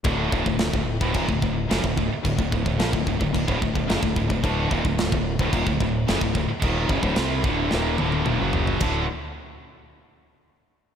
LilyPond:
<<
  \new Staff \with { instrumentName = "Distorted electric guitar" } { \clef bass \time 4/4 \tempo 4 = 110 <d, a, d>8 <ees, bes,>16 <d, a,>16 <d, a,>16 <d, a,>8 <d, a,>16 <ees, bes,>16 <d, a,>16 <d, a,>8 <fis, cis>16 <d, a,>16 <d, a,>16 r16 | <d, a,>16 <d, a,>16 <d, a,>16 <d, a,>16 <bes, f>16 <d, a,>16 <d, a,>16 <d, a,>16 <d, a,>16 <d, a,>16 <d, a,>16 <d, a,>16 <fis, cis>16 <d, a,>16 <d, a,>16 <d, a,>16 | <d, a, d>8 <ees, bes,>16 <d, a,>16 <d, a,>16 <d, a,>8 <d, a,>16 <ees, bes,>16 <d, a,>16 <d, a,>8 <fis, cis>16 <d, a,>16 <d, a,>16 r16 | <ees, bes, ees>8 <fis, cis>16 <d, a,>16 <c g c'>8 <d, a, d>8 <ees, bes, ees>8 <d, a, d>8 <ees, bes,>16 <fis, cis fis>8. |
<d, a, d>8 r2. r8 | }
  \new Staff \with { instrumentName = "Distorted electric guitar" } { \clef bass \time 4/4 <d, a, d>8 <ees, bes,>16 <d, a,>16 <d, a,>16 <d, a,>8 <d, a,>16 <ees, bes,>16 <d, a,>16 <d, a,>8 <fis, cis>16 <d, a,>16 <d, a,>16 r16 | <d, a,>16 <d, a,>16 <d, a,>16 <d, a,>16 <bes, f>16 <d, a,>16 <d, a,>16 <d, a,>16 <d, a,>16 <d, a,>16 <d, a,>16 <d, a,>16 <fis, cis>16 <d, a,>16 <d, a,>16 <d, a,>16 | <d, a, d>8 <ees, bes,>16 <d, a,>16 <d, a,>16 <d, a,>8 <d, a,>16 <ees, bes,>16 <d, a,>16 <d, a,>8 <fis, cis>16 <d, a,>16 <d, a,>16 r16 | <ees, bes, ees>8 <fis, cis>16 <d, a,>16 <c g c'>8 <d, a, d>8 <ees, bes, ees>8 <d, a, d>8 <ees, bes,>16 <fis, cis fis>8. |
<d, a, d>8 r2. r8 | }
  \new Staff \with { instrumentName = "Overdriven electric guitar" } { \clef bass \time 4/4 <d, a, d>8 <ees, bes,>16 <d, a,>16 <d, a,>16 <d, a,>8 <d, a,>16 <ees, bes,>16 <d, a,>16 <d, a,>8 <fis, cis>16 <d, a,>16 <d, a,>16 r16 | <d, a,>16 <d, a,>16 <d, a,>16 <d, a,>16 <bes, f>16 <d, a,>16 <d, a,>16 <d, a,>16 <d, a,>16 <d, a,>16 <d, a,>16 <d, a,>16 <fis, cis>16 <d, a,>16 <d, a,>16 <d, a,>16 | <d, a, d>8 <ees, bes,>16 <d, a,>16 <d, a,>16 <d, a,>8 <d, a,>16 <ees, bes,>16 <d, a,>16 <d, a,>8 <fis, cis>16 <d, a,>16 <d, a,>16 r16 | <ees, bes, ees>8 <fis, cis>16 <d, a,>16 <c g c'>8 <d, a, d>8 <ees, bes, ees>8 <d, a, d>8 <ees, bes,>16 <fis, cis fis>8. |
<d, a, d a fis'>8 r2. r8 | }
  \new Staff \with { instrumentName = "Fingered electric bass" } { \clef bass \time 4/4 d,,8 ees,,16 d,,16 d,,16 d,,8 d,,16 ees,,16 d,,16 d,,8 fis,,16 d,,16 d,,16 r16 | d,,16 d,,16 d,,16 d,,16 bes,,16 d,,16 d,,16 d,,16 d,,16 d,,16 d,,16 d,,16 fis,,16 d,,16 d,,16 d,,16 | d,,8 ees,,16 d,,16 d,,16 d,,8 d,,16 ees,,16 d,,16 d,,8 fis,,16 d,,16 d,,16 r16 | ees,,8 fis,,16 d,,16 c,8 d,,8 ees,,8 d,,8 ees,,16 fis,,8. |
d,,8 r2. r8 | }
  \new DrumStaff \with { instrumentName = "Drums" } \drummode { \time 4/4 <cymc bd>8 bd16 bd16 <cymc sn>16 bd8 bd16 <cymc bd>16 bd16 bd8 <cymc sn>16 bd16 bd8 | <cymc bd>16 bd16 bd16 bd16 <cymc sn>16 bd16 bd16 bd16 <cymc bd>16 bd16 bd16 bd16 <cymc sn>16 bd16 bd16 bd16 | <cymc bd>8 bd16 bd16 <cymc sn>16 bd8 bd16 <cymc bd>16 bd16 bd8 <cymc sn>16 bd16 bd8 | <cymc bd>8 bd16 bd16 <cymc sn>8 bd8 sn8 tommh16 tommh16 toml8 tomfh16 tomfh16 |
<cymc bd>4 r4 r4 r4 | }
>>